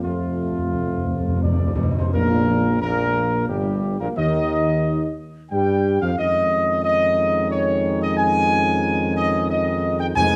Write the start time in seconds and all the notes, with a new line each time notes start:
Already playing: F2
0.02 F2 C3 F3 A3 F4
0.12 F2
0.19 F2
0.27 F2
0.35 F2
0.43 F2
0.51 F2
0.59 F2
0.66 F2
0.74 F2
0.81 F2
0.89 F2
0.97 F2
1.05 F2
1.12 F2
1.20 F2
1.28 F2
1.36 F2
1.43 F2 D5
1.52 F2
1.59 F2
1.67 F2
1.75 F2
1.83 F2
1.91 F2
1.95 F2 C5
2.13 A#1 F2 A#2 A#3 A#4
2.81 A#1 A#2 A#3 A#4
3.48 G1 G2 G3 G4
4.00 A#1 A#2 A#3 A#4
4.16 D#2 D#3 D#4 D#5
5.51 G2 G3 G4 G5
6.01 F2 F3 F4 F5
6.18 F2 D#3 G#3 C#4 D#4 D#5
6.84 D#5
7.50 C#5
8.01 D#5
8.17 G#5
9.16 D#5
9.50 D#5
9.99 G5
10.16 F2 D#3 G#3 C4 D#4 G#5